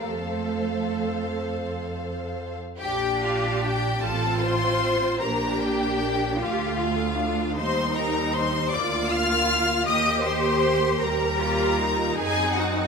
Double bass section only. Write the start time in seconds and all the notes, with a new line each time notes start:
0.03 F2
2.81 A#1
4.03 A1
5.23 A#1
6.41 D2
7.57 D#2
8.73 D2
9.88 D#2
11.01 D#2
12.18 F#2